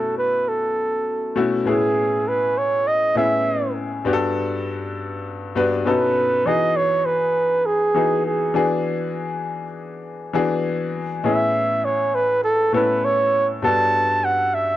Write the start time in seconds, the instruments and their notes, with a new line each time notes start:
Already playing: grand piano B2 A3 C#4 E4 F#4, flugelhorn A4
0.18 flugelhorn B4
0.48 flugelhorn A4
1.35 grand piano B2 A3 C#4 E4 F#4
1.65 grand piano A2 B3 C#4 E4 G#4, flugelhorn G#4
2.28 flugelhorn B4
2.58 flugelhorn C#5
2.87 flugelhorn D#5
3.15 grand piano A2 B3 C#4 E4 G#4, flugelhorn E5
4.05 grand piano G2 B3 D4 F#4 G4
4.13 grand piano A4
5.55 grand piano G2 B3 D4 F#4 B4
5.86 grand piano B2 C#4 D#4 F#4 A4, flugelhorn B4
6.46 grand piano E3 B3 D#4 F#4 G#4, flugelhorn D#5
6.77 flugelhorn C#5
7.05 flugelhorn B4
7.66 flugelhorn G#4
7.95 grand piano E3 B3 D#4 F#4 G#4
8.26 flugelhorn G#4
8.54 grand piano E3 B3 D4 F#4 G#4
10.33 grand piano E3 B3 D4 F#4 G#4
11.24 grand piano A2 B3 C#4 E4 G#4, flugelhorn E5
11.85 flugelhorn C#5
12.15 flugelhorn B4
12.44 flugelhorn A4
12.72 grand piano A2 B3 C#4 E4 A4, flugelhorn B4
13.05 flugelhorn C#5
13.62 grand piano G2 B3 D4 F#4 A4, flugelhorn A5
14.24 flugelhorn F#5
14.55 flugelhorn E5